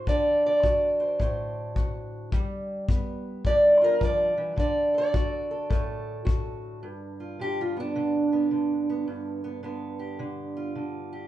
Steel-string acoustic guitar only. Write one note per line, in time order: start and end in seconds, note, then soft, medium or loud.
0.07 2.88 D3 medium
0.07 0.45 D5 medium
0.46 2.14 D5 medium
0.64 1.75 F#4 medium
1.00 1.19 C5 medium
1.19 2.32 A2 medium
1.19 2.30 C5 medium
1.76 2.30 F#4 medium
2.33 4.55 G3 medium
2.89 4.00 B3 medium
3.46 4.55 D3 medium
3.46 3.83 D5 loud
3.81 4.55 F4 soft
3.81 4.02 A#4 medium
4.00 4.36 F3 medium
4.00 4.58 D5 medium
4.37 4.56 E3 medium
4.56 7.38 D3 medium
4.56 4.96 D5 medium
4.94 5.50 A4 medium
4.94 6.65 D5 loud
5.14 6.24 F#4 medium
5.51 5.69 A4 medium
5.70 6.82 A2 medium
5.70 6.80 A4 medium
6.25 6.79 F#4 medium
6.83 9.07 G2 medium
7.20 7.61 F4 soft
7.39 7.94 D3 medium
7.39 7.59 G4 medium
7.61 7.78 F4 medium
7.77 8.32 B3 soft
7.77 9.47 D4 medium
7.96 8.50 D3 medium
8.32 8.89 B3 soft
8.51 9.62 D3 medium
8.89 9.44 B3 soft
9.08 11.28 G2 medium
9.44 9.64 B3 soft
9.63 10.18 D3 medium
9.63 11.28 B3 soft
9.99 11.12 G4 medium
10.19 10.74 D3 medium
10.57 11.28 F4 medium
10.75 11.28 D3 medium
11.13 11.28 G4 soft